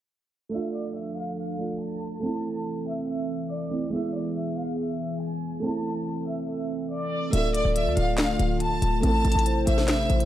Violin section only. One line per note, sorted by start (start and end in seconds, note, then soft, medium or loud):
0.52 0.71 E5 loud
0.74 0.92 D5 medium
0.95 1.14 E5 medium
1.16 1.35 F5 medium
1.37 1.77 F5 medium
1.80 2.20 A5 medium
2.22 2.82 A5 loud
2.87 3.05 E5 medium
3.07 3.47 E5 medium
3.50 3.90 D5 medium
3.93 4.11 E5 loud
4.14 4.33 D5 medium
4.35 4.54 E5 medium
4.57 4.75 F5 medium
4.78 5.18 E5 medium
5.20 5.60 G#5 medium
5.63 6.23 A5 loud
6.26 6.45 E5 medium
6.48 6.88 E5 medium
6.91 7.31 D5 medium
7.33 7.52 E5 loud
7.55 7.73 D5 medium
7.76 7.94 E5 medium
7.97 8.16 F5 medium
8.18 8.58 F5 medium
8.61 9.01 A5 medium
9.03 9.63 A5 loud
9.68 9.86 E5 medium
9.88 10.25 E5 loud